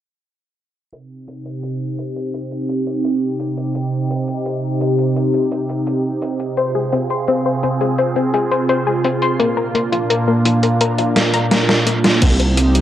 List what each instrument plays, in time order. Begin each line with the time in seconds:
0.93 analog synth pad C3 C4 D#4 G4, closed hi-hat
1.28 closed hi-hat
1.45 closed hi-hat
1.63 closed hi-hat
1.98 closed hi-hat
2.16 closed hi-hat
2.34 closed hi-hat
2.51 closed hi-hat
2.69 closed hi-hat
2.87 closed hi-hat
3.04 closed hi-hat
3.40 closed hi-hat
3.57 closed hi-hat
3.75 closed hi-hat
4.10 closed hi-hat
4.28 closed hi-hat
4.46 closed hi-hat
4.81 closed hi-hat
4.98 closed hi-hat
5.16 closed hi-hat
5.34 closed hi-hat
5.52 closed hi-hat
5.69 closed hi-hat
5.87 closed hi-hat
6.22 closed hi-hat
6.40 closed hi-hat
6.57 analog synth pad C4 F4 G#4, synth arpeggio sound C5, closed hi-hat
6.75 synth arpeggio sound G#4
6.92 synth arpeggio sound C4, closed hi-hat
7.10 synth arpeggio sound C6, closed hi-hat
7.28 synth arpeggio sound C4, closed hi-hat
7.46 synth arpeggio sound C5
7.63 synth arpeggio sound C4, closed hi-hat
7.81 synth arpeggio sound G#4, closed hi-hat
7.98 synth arpeggio sound C5, closed hi-hat
8.16 synth arpeggio sound C4, closed hi-hat
8.34 synth arpeggio sound G#4, closed hi-hat
8.51 synth arpeggio sound C5, closed hi-hat
8.69 synth arpeggio sound C5, closed hi-hat
8.87 synth arpeggio sound G#4
9.04 synth arpeggio sound C4, closed hi-hat
9.22 synth arpeggio sound C6, closed hi-hat
9.39 analog synth pad A#2 A#3 D4, synth arpeggio sound A#3, closed hi-hat
9.57 synth arpeggio sound A#4
9.75 synth arpeggio sound A#3, closed hi-hat
9.92 synth arpeggio sound F4, closed hi-hat
10.10 synth arpeggio sound A#4, closed hi-hat
10.28 synth arpeggio sound A#3
10.45 synth arpeggio sound F4, closed hi-hat
10.63 synth arpeggio sound A#4, closed hi-hat
10.81 synth arpeggio sound A#4, closed hi-hat
10.98 synth arpeggio sound F4, closed hi-hat
11.16 synth arpeggio sound A#3, snare, closed hi-hat
11.34 synth arpeggio sound A#5, closed hi-hat
11.51 synth arpeggio sound A#3, snare, closed hi-hat
11.69 synth arpeggio sound A#4, snare
11.87 synth arpeggio sound A#3, closed hi-hat
12.04 synth arpeggio sound F4, snare, closed hi-hat
12.22 detuned saw bass C2, analog synth pad C3 C4 D#4 G4, synth arpeggio sound C4, kick, closed hi-hat, crash
12.40 synth arpeggio sound C5, closed hi-hat
12.57 synth arpeggio sound C4, closed hi-hat
12.75 synth arpeggio sound G4, closed hi-hat